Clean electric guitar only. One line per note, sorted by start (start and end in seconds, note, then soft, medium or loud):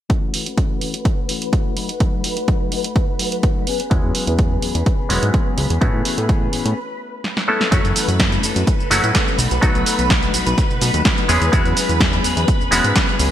0.09 0.32 E3 medium
0.09 0.33 A3 medium
0.09 0.34 C#4 medium
0.09 0.34 F#4 medium
0.33 0.46 E3 medium
0.33 0.47 A3 medium
0.33 0.46 C#4 medium
0.33 0.44 F#4 medium
0.46 0.57 A3 soft
0.46 0.57 C#4 medium
0.46 0.57 F#4 medium
0.57 0.80 E3 medium
0.57 0.81 A3 medium
0.57 0.81 C#4 medium
0.57 0.82 F#4 medium
0.81 0.94 E3 medium
0.81 0.94 A3 medium
0.81 0.94 C#4 medium
0.81 0.92 F#4 medium
0.93 1.19 A3 soft
0.93 1.18 C#4 medium
0.93 1.16 F#4 medium
1.17 1.28 A3 soft
1.17 1.29 C#4 soft
1.17 1.29 F#4 medium
1.28 1.51 E3 medium
1.28 1.52 A3 medium
1.28 1.52 C#4 medium
1.28 1.53 F#4 medium
1.54 1.77 C#4 medium
1.76 1.89 F#3 medium
1.76 1.89 A3 medium
1.76 1.89 D#4 medium
1.76 1.87 F#4 medium
1.89 1.99 A3 soft
1.89 2.00 D#4 medium
1.89 2.00 F#4 medium
2.00 2.22 F#3 medium
2.00 2.24 A3 medium
2.00 2.24 D#4 medium
2.24 2.37 F#3 medium
2.24 2.37 A3 medium
2.24 2.36 D#4 medium
2.24 2.35 F#4 medium
2.36 2.47 A3 soft
2.36 2.48 D#4 medium
2.36 2.48 F#4 medium
2.48 2.70 F#3 medium
2.71 2.84 F#3 medium
2.71 2.85 A3 medium
2.71 2.84 D#4 medium
2.71 2.83 F#4 medium
2.84 3.09 A3 soft
2.84 3.08 D#4 medium
2.84 3.06 F#4 medium
3.08 3.19 A3 soft
3.08 3.20 D#4 medium
3.08 3.19 F#4 medium
3.19 3.42 F#3 medium
3.19 3.43 A3 medium
3.19 3.43 D#4 medium
3.19 3.44 F#4 medium
3.45 3.68 F#4 loud
3.67 3.80 F#3 medium
3.67 3.80 B3 medium
3.67 3.80 C#4 medium
3.67 3.78 G#4 medium
3.79 3.90 B3 soft
3.79 3.91 C#4 soft
3.79 3.91 G#4 medium
3.91 4.13 F#3 medium
3.91 4.14 B3 medium
3.91 4.15 C#4 medium
3.91 4.16 G#4 loud
4.14 4.27 F#3 medium
4.14 4.28 B3 medium
4.14 4.27 C#4 medium
4.14 4.26 G#4 medium
4.27 4.37 B3 soft
4.27 4.38 C#4 medium
4.27 4.38 G#4 medium
4.38 4.60 F#3 medium
4.38 4.62 B3 medium
4.38 4.62 C#4 medium
4.62 4.75 F#3 medium
4.62 4.75 B3 medium
4.62 4.75 C#4 medium
4.62 4.73 G#4 medium
4.74 5.00 B3 medium
4.74 4.98 C#4 medium
4.74 4.97 G#4 medium
4.98 5.09 B3 soft
4.98 5.10 C#4 medium
4.98 5.10 G#4 medium
5.09 5.32 F#3 medium
5.09 5.33 B3 medium
5.09 5.34 C#4 medium
5.09 5.34 G#4 medium
5.33 5.56 F#3 medium
5.33 5.57 B3 medium
5.33 5.58 C#4 medium
5.33 5.58 G#4 loud
5.57 5.70 F#3 medium
5.57 5.70 B3 medium
5.57 5.70 C#4 medium
5.57 5.68 G#4 medium
5.70 5.81 B3 soft
5.70 5.81 C#4 medium
5.70 5.81 G#4 medium
5.81 6.03 E3 medium
5.81 6.05 B3 medium
5.81 6.05 C#4 medium
5.81 6.06 G#4 medium
6.05 6.18 E3 medium
6.05 6.18 B3 medium
6.05 6.17 C#4 medium
6.05 6.16 G#4 medium
6.17 6.28 B3 medium
6.17 6.29 C#4 medium
6.17 6.29 G#4 medium
6.29 6.51 E3 medium
6.29 6.52 B3 medium
6.29 6.53 C#4 medium
6.29 6.54 G#4 loud
6.52 6.65 E3 medium
6.52 6.66 B3 medium
6.52 6.65 C#4 medium
6.52 6.63 G#4 medium
6.65 6.78 B3 soft
6.65 6.77 C#4 medium
6.65 6.76 G#4 medium
7.71 7.94 E3 medium
7.71 7.95 A3 medium
7.71 7.96 C#4 medium
7.71 7.96 A4 medium
7.95 8.18 E3 medium
7.95 8.19 A3 medium
7.95 8.19 C#4 medium
7.95 8.20 A4 medium
8.20 8.43 C#4 medium
8.20 8.44 A4 medium
8.43 8.79 E3 medium
8.43 8.80 A3 medium
8.43 8.79 C#4 medium
8.43 8.78 A4 medium
8.79 8.90 A3 soft
8.79 8.91 C#4 soft
8.79 8.91 A4 medium
8.90 9.03 E3 medium
8.90 9.04 A3 medium
8.90 9.03 C#4 medium
8.90 9.02 A4 medium
9.03 9.14 C#4 medium
9.03 9.14 A4 medium
9.14 9.27 E3 medium
9.14 9.27 A3 medium
9.14 9.27 C#4 loud
9.14 9.25 A4 loud
9.26 9.38 A3 soft
9.26 9.39 C#4 medium
9.26 9.38 A4 medium
9.38 9.51 F#3 medium
9.38 9.51 A3 medium
9.38 9.51 D#4 medium
9.38 9.49 F#4 medium
9.50 9.61 A3 soft
9.50 9.62 D#4 medium
9.50 9.62 F#4 medium
9.62 9.84 F#3 medium
9.62 9.85 A3 medium
9.62 9.86 D#4 medium
9.62 9.87 F#4 medium
9.86 10.08 F#3 medium
9.86 10.09 A3 medium
9.86 10.10 D#4 medium
9.86 10.10 F#4 medium
10.10 10.32 F#3 medium
10.10 10.33 A3 medium
10.10 10.34 D#4 medium
10.10 10.35 F#4 loud
10.33 10.70 F#3 medium
10.33 10.70 A3 medium
10.33 10.70 D#4 medium
10.33 10.68 F#4 medium
10.70 10.81 A3 soft
10.70 10.81 D#4 medium
10.70 10.81 F#4 medium
10.81 11.03 F#3 medium
10.81 11.04 A3 medium
10.81 11.05 D#4 medium
10.81 11.05 F#4 medium
11.05 11.27 F#3 medium
11.05 11.29 D#4 medium
11.05 11.30 F#4 loud
11.28 11.41 F#3 medium
11.28 11.42 B3 medium
11.28 11.41 C#4 medium
11.28 11.39 G#4 medium
11.41 11.52 B3 medium
11.41 11.52 C#4 medium
11.41 11.52 G#4 medium
11.52 11.75 F#3 medium
11.52 11.76 B3 medium
11.52 11.77 C#4 loud
11.52 11.77 G#4 loud
11.76 11.99 F#3 medium
11.76 11.99 B3 medium
11.76 12.00 C#4 medium
11.76 12.00 G#4 medium
12.00 12.22 F#3 medium
12.00 12.23 B3 medium
12.00 12.24 C#4 medium
12.00 12.25 G#4 loud
12.23 12.60 F#3 medium
12.23 12.61 B3 medium
12.23 12.60 C#4 medium
12.23 12.58 G#4 medium
12.60 12.71 B3 soft
12.60 12.72 C#4 medium
12.60 12.71 G#4 medium
12.71 12.84 F#3 medium
12.71 12.85 B3 medium
12.71 12.84 C#4 medium
12.71 12.82 G#4 medium
12.83 12.95 B3 soft
12.83 12.95 C#4 medium
12.83 12.95 G#4 medium
12.95 13.08 F#3 medium
12.95 13.08 B3 medium
12.95 13.08 C#4 medium
12.95 13.06 G#4 loud
13.07 13.18 B3 soft
13.07 13.19 C#4 medium
13.07 13.19 G#4 medium
13.19 13.31 F#3 medium
13.19 13.31 B3 medium
13.19 13.31 C#4 medium
13.19 13.30 G#4 medium